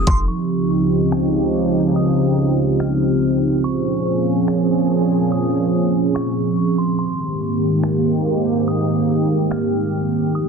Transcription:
0.00 0.25 F3 medium
0.00 0.24 C4 medium
0.00 0.25 D#4 medium
0.00 0.24 G4 medium
0.00 0.25 A4 medium
0.07 0.27 F1 loud
0.07 0.27 C6 medium
0.07 kick loud
0.07 closed hi-hat medium
0.28 3.61 C#2 medium
0.28 3.60 C#3 medium
0.28 3.60 F3 medium
0.28 10.31 C4 medium
0.28 3.61 D#4 medium
0.28 3.61 G4 medium
0.28 0.67 C#6 medium
1.12 finger snap loud
1.96 2.35 D#6 loud
2.80 3.60 F6 medium
2.80 finger snap loud
3.64 6.96 A#2 medium
3.64 6.96 F3 medium
3.64 6.96 C#4 medium
3.64 6.96 G#4 medium
3.64 4.03 C#6 loud
4.48 finger snap loud
5.32 5.71 D#6 loud
6.15 6.74 C#6 medium
6.15 finger snap loud
6.78 6.98 C6 medium
6.99 10.32 G#2 medium
6.99 10.32 D#3 medium
6.99 10.32 A#3 medium
6.99 10.48 G4 medium
6.99 7.38 C6 medium
7.83 finger snap loud
8.68 9.07 D#6 loud
9.51 10.31 F6 medium
9.51 finger snap loud
10.35 10.48 F2 medium
10.35 10.48 F3 medium
10.35 10.48 A3 medium
10.35 10.48 D#4 medium
10.35 10.48 D#6 loud

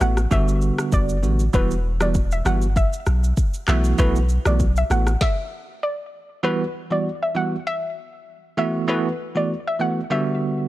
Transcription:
0.00 0.26 A1 loud
0.00 0.20 E3 medium
0.00 0.20 A3 medium
0.00 0.20 B3 medium
0.00 0.20 F#4 medium
0.00 0.15 F#5 medium
0.00 cross-stick medium
0.00 shaker medium
0.17 cross-stick medium
0.17 shaker soft
0.31 0.71 G1 loud
0.31 1.16 D3 loud
0.31 1.16 G3 medium
0.31 1.16 B3 medium
0.31 1.16 F#4 loud
0.31 0.76 E5 loud
0.31 kick loud
0.31 shaker medium
0.48 shaker medium
0.61 shaker soft
0.78 cross-stick loud
0.78 shaker medium
0.92 1.24 F#1 loud
0.92 1.38 D5 medium
0.92 kick loud
0.92 shaker medium
1.09 shaker medium
1.23 1.49 A1 medium
1.23 1.42 D3 medium
1.23 1.43 G3 medium
1.23 1.43 B3 medium
1.23 1.43 F#4 medium
1.23 shaker soft
1.40 shaker medium
1.53 2.41 E1 loud
1.53 1.73 E3 loud
1.53 1.73 G3 medium
1.53 1.73 B3 medium
1.53 1.73 F#4 loud
1.53 1.80 B4 loud
1.53 kick loud
1.53 shaker medium
1.71 shaker medium
2.01 2.18 E3 medium
2.01 2.18 G3 medium
2.01 2.18 B3 medium
2.01 2.18 F#4 medium
2.01 2.13 D5 medium
2.01 cross-stick loud
2.01 shaker soft
2.15 kick medium
2.15 shaker medium
2.31 2.44 E5 medium
2.31 shaker medium
2.45 2.85 G1 loud
2.45 2.65 E3 medium
2.45 2.65 G3 medium
2.45 2.65 B3 medium
2.45 2.65 F#4 medium
2.45 2.60 F#5 medium
2.45 cross-stick loud
2.45 shaker medium
2.62 shaker soft
2.76 3.21 E5 loud
2.76 kick loud
2.76 shaker medium
2.93 shaker medium
3.06 3.32 B1 loud
3.06 cross-stick medium
3.06 shaker soft
3.24 shaker medium
3.37 kick loud
3.37 shaker medium
3.54 shaker medium
3.67 3.93 B1 loud
3.67 3.96 E3 medium
3.67 3.96 A3 medium
3.67 3.96 B3 medium
3.67 3.96 F#4 loud
3.67 3.83 E5 medium
3.67 cross-stick medium
3.67 clap medium
3.67 shaker medium
3.84 shaker medium
3.98 4.38 B1 loud
3.98 4.18 E3 loud
3.98 4.18 A3 medium
3.98 4.18 B3 medium
3.98 4.18 F#4 loud
3.98 4.25 B4 loud
3.98 kick loud
3.98 shaker medium
4.16 shaker medium
4.29 shaker medium
4.45 4.83 B1 loud
4.45 4.63 E3 medium
4.45 4.63 A3 medium
4.45 4.63 B3 medium
4.45 4.63 F#4 medium
4.45 4.58 D5 medium
4.45 cross-stick loud
4.45 shaker soft
4.60 kick medium
4.60 shaker medium
4.76 4.89 E5 medium
4.76 shaker medium
4.90 5.16 A1 medium
4.90 5.10 E3 medium
4.90 5.10 A3 medium
4.90 5.10 B3 medium
4.90 5.10 F#4 medium
4.90 5.05 F#5 medium
4.90 cross-stick medium
4.90 shaker medium
5.07 cross-stick medium
5.07 shaker medium
5.21 5.66 E5 loud
5.21 kick loud
5.21 snare medium
5.83 6.27 D5 medium
6.43 6.63 E3 loud
6.43 6.63 G3 medium
6.43 6.63 B3 medium
6.43 6.63 F#4 loud
6.43 6.70 B4 loud
6.90 7.08 E3 medium
6.90 7.08 G3 medium
6.90 7.08 B3 medium
6.90 7.08 F#4 medium
6.90 7.03 D5 medium
7.22 7.34 E5 medium
7.35 7.55 E3 medium
7.35 7.55 G3 medium
7.35 7.55 B3 medium
7.35 7.55 F#4 medium
7.35 7.50 F#5 medium
7.67 8.11 E5 loud
8.57 8.86 E3 medium
8.57 8.86 A3 medium
8.57 8.86 B3 medium
8.57 8.86 F#4 loud
8.57 8.72 E5 medium
8.88 9.08 E3 loud
8.88 9.08 A3 medium
8.88 9.08 B3 medium
8.88 9.08 F#4 loud
8.88 9.15 B4 loud
9.35 9.53 E3 medium
9.35 9.53 A3 medium
9.35 9.53 B3 medium
9.35 9.53 F#4 medium
9.35 9.48 D5 medium
9.67 9.79 E5 medium
9.80 9.99 E3 medium
9.80 10.00 A3 medium
9.80 10.00 B3 medium
9.80 10.00 F#4 medium
9.80 9.95 F#5 medium
10.10 10.68 D3 medium
10.10 10.68 G3 medium
10.10 10.68 B3 medium
10.10 10.68 F#4 loud
10.10 10.56 E5 medium

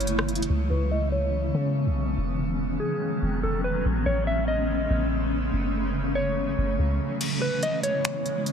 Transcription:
0.00 0.47 F#1 loud
0.00 0.46 C#3 medium
0.00 0.48 E3 medium
0.00 0.48 F#3 medium
0.00 0.46 A3 medium
0.00 0.46 E4 medium
0.00 0.45 C#5 medium
0.00 closed hi-hat medium
0.07 closed hi-hat medium
0.19 cross-stick medium
0.29 closed hi-hat soft
0.35 closed hi-hat medium
0.42 closed hi-hat medium
0.49 0.70 C#2 loud
0.49 2.16 C#3 medium
0.49 2.16 E3 medium
0.49 3.82 G#3 medium
0.49 5.49 B3 medium
0.49 7.17 C#4 medium
0.70 1.51 C#2 loud
0.70 0.90 B4 medium
0.91 1.11 D#5 medium
1.12 1.71 C#5 medium
1.54 1.87 C#3 loud
1.86 2.16 B1 loud
2.17 2.78 E1 loud
2.17 3.83 D#3 medium
2.17 3.83 F#3 medium
2.80 3.39 G#4 medium
3.22 3.42 E1 loud
3.43 3.76 E1 loud
3.43 3.63 A4 medium
3.64 3.84 B4 medium
3.75 3.85 D#1 medium
3.85 4.05 A1 loud
3.85 7.17 C#3 medium
3.85 5.51 G#3 medium
3.85 7.17 A3 medium
4.06 4.87 A1 loud
4.06 4.26 C#5 medium
4.27 4.47 E5 medium
4.48 5.07 D#5 medium
4.90 5.50 A1 loud
5.53 6.54 F#1 loud
5.53 7.19 E3 medium
5.53 7.19 F#3 medium
6.15 7.17 C#5 medium
6.58 6.78 F#1 loud
6.79 6.99 C#2 loud
7.21 8.52 C#3 medium
7.21 8.52 E3 medium
7.21 8.52 G#3 medium
7.21 8.52 B3 medium
7.21 8.52 E4 medium
7.21 closed hi-hat medium
7.21 crash medium
7.42 7.62 B4 medium
7.63 7.83 D#5 medium
7.63 closed hi-hat medium
7.83 8.43 C#5 medium
7.83 closed hi-hat medium
8.05 finger snap loud
8.05 closed hi-hat medium
8.26 closed hi-hat medium
8.46 closed hi-hat medium

